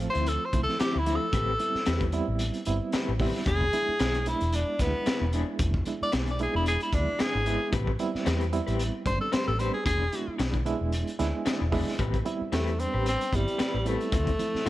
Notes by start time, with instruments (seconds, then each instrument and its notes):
0.00 reed electric piano F3 A3 C4 F4, closed hi-hat
0.10 clean electric guitar E4, tenor saxophone C5
0.15 fingered electric bass D2, clean electric guitar F3 C4, closed hi-hat
0.26 tenor saxophone A4, closed hi-hat
0.45 tenor saxophone C5
0.53 fingered electric bass C2, reed electric piano F3 A3 C4 E4, kick, closed hi-hat
0.63 tenor saxophone A4
0.69 snare
0.79 clean electric guitar D3 F3 C4 E4, tenor saxophone G4, muted fingered electric bass stroke, snare, closed hi-hat
0.95 fingered electric bass D2, tenor saxophone E4
1.06 clean electric guitar D3 F3 C4 E4, reed electric piano F3 A3 C4 E4, closed hi-hat
1.16 tenor saxophone A4
1.33 fingered electric bass A1, clean electric guitar A3 C4 G4 B4, kick, closed hi-hat
1.59 reed electric piano G3 B3 C4 E4, closed hi-hat
1.75 muted fingered electric bass stroke, snare
1.86 fingered electric bass E2, clean electric guitar A3 C4 G4 B4, snare, closed hi-hat
2.00 kick, closed hi-hat
2.12 reed electric piano G3 B3 C4 E4, closed hi-hat
2.28 fingered electric bass A1
2.39 closed hi-hat
2.54 closed hi-hat
2.65 fingered electric bass G1, reed electric piano G3 B3 C4 E4, closed hi-hat
2.92 clean electric guitar A3 C4 G4 B4, muted fingered electric bass stroke, snare, closed hi-hat
3.08 fingered electric bass A1
3.19 reed electric piano G3 B3 C4 E4, clean electric guitar A3 C4 G4 B4, kick, open hi-hat
3.35 snare
3.46 fingered electric bass E1, clean electric guitar E3 B3 D4 G#4, tenor saxophone G#4, kick, closed hi-hat
3.61 kick
3.73 reed electric piano G#3 B3 D4 E4, closed hi-hat
3.88 muted fingered electric bass stroke
3.99 fingered electric bass B1, clean electric guitar E3 B3 D4 G#4, snare, closed hi-hat
4.14 closed hi-hat
4.26 reed electric piano G#3 B3 D4 E4, tenor saxophone E4, closed hi-hat
4.41 fingered electric bass E1, closed hi-hat
4.52 tenor saxophone D4, closed hi-hat
4.79 fingered electric bass D2, reed electric piano G#3 B3 D4 E4, tenor saxophone B3, kick, snare, closed hi-hat
5.06 clean electric guitar E3 B3 D4 G#4, muted fingered electric bass stroke, snare, closed hi-hat
5.21 fingered electric bass E1
5.33 clean electric guitar E3 B3 D4 G#4, reed electric piano G#3 B3 D4 E4, closed hi-hat
5.59 fingered electric bass E1, kick, closed hi-hat
5.74 kick
5.85 reed electric piano G#3 B3 D4 E4, closed hi-hat
6.02 tenor saxophone D5, muted fingered electric bass stroke
6.12 fingered electric bass B1, clean electric guitar E3 B3 D4 G#4, snare, closed hi-hat
6.27 tenor saxophone D5, closed hi-hat
6.39 reed electric piano G#3 B3 D4 E4, tenor saxophone G#4, closed hi-hat
6.54 fingered electric bass E1, clean electric guitar B3 D4 G#4, tenor saxophone E4
6.66 tenor saxophone G#4, closed hi-hat
6.80 tenor saxophone E4, closed hi-hat
6.93 fingered electric bass D2, reed electric piano G#3 B3 D4 E4, tenor saxophone D4, kick, closed hi-hat
7.19 clean electric guitar E3 B3 D4 G#4, tenor saxophone G#4, muted fingered electric bass stroke, snare, closed hi-hat
7.35 fingered electric bass G#1
7.45 clean electric guitar E3 B3 D4 G#4, reed electric piano G#3 B3 D4 E4, closed hi-hat
7.72 fingered electric bass A1, clean electric guitar A3 C4 G4 B4, kick, closed hi-hat
7.87 kick
7.99 reed electric piano G3 B3 C4 E4, closed hi-hat
8.15 muted fingered electric bass stroke, snare
8.25 fingered electric bass E2, clean electric guitar A3 C4 G4 B4, snare, closed hi-hat
8.41 closed hi-hat
8.52 reed electric piano G3 B3 C4 E4, closed hi-hat
8.67 fingered electric bass A1, clean electric guitar C4 G4 B4, closed hi-hat
8.79 closed hi-hat
9.06 fingered electric bass G1, reed electric piano G3 B3 C4 D4, tenor saxophone C5, kick, closed hi-hat
9.21 tenor saxophone A4
9.32 clean electric guitar A3 C4 G4 B4, tenor saxophone C5, muted fingered electric bass stroke, snare, closed hi-hat
9.48 fingered electric bass A1, tenor saxophone A4
9.59 reed electric piano G3 B3 C4 D4, clean electric guitar A3 C4 G4 B4, tenor saxophone C5, closed hi-hat
9.73 tenor saxophone G#4
9.85 fingered electric bass E1, clean electric guitar E3 B3 D4 G#4, tenor saxophone G#4, kick, closed hi-hat
10.12 reed electric piano G#3 B3 D4 E4, closed hi-hat
10.28 muted fingered electric bass stroke
10.38 fingered electric bass B1, clean electric guitar E3 B3 D4 G#4, snare, closed hi-hat
10.54 kick, closed hi-hat
10.66 reed electric piano G#3 B3 D4 E4, closed hi-hat
10.81 fingered electric bass E1
10.92 closed hi-hat
11.07 closed hi-hat
11.19 fingered electric bass D2, reed electric piano G#3 B3 D4 E4 G#5, snare, closed hi-hat
11.45 clean electric guitar E3 B3 D4 G#4, reed electric piano E5, muted fingered electric bass stroke, snare, closed hi-hat
11.61 fingered electric bass E1
11.72 clean electric guitar E3 B3 D4 G#4, reed electric piano G#3 B3 D4 E4, kick, open hi-hat
11.88 snare
11.99 fingered electric bass A1, clean electric guitar A3 C4 G4 B4, kick, closed hi-hat
12.14 kick, closed hi-hat
12.25 reed electric piano G3 B3 C4 E4, closed hi-hat
12.41 muted fingered electric bass stroke
12.52 fingered electric bass E2, clean electric guitar A3 C4 G4 B4, tenor saxophone A3, snare, closed hi-hat
12.67 closed hi-hat
12.79 reed electric piano G3 B3 C4 D4, tenor saxophone C4, closed hi-hat
12.94 fingered electric bass A1, clean electric guitar C4 G4 B4
13.06 tenor saxophone C4, closed hi-hat
13.21 closed hi-hat
13.32 fingered electric bass G1, reed electric piano G3 B3 C4 E4, tenor saxophone G3, kick, closed hi-hat
13.48 closed hi-hat
13.58 clean electric guitar A3 C4 G4 B4, muted fingered electric bass stroke, snare, closed hi-hat
13.74 fingered electric bass A1
13.85 reed electric piano G3 B3 C4 E4, clean electric guitar A3 C4 G4 B4, tenor saxophone A3, closed hi-hat
14.01 closed hi-hat
14.12 fingered electric bass D2, clean electric guitar D3 F3 C4 E4, kick, closed hi-hat
14.27 kick, closed hi-hat
14.39 reed electric piano F3 A3 C4 E4, closed hi-hat
14.54 muted fingered electric bass stroke, snare
14.65 clean electric guitar D3 F3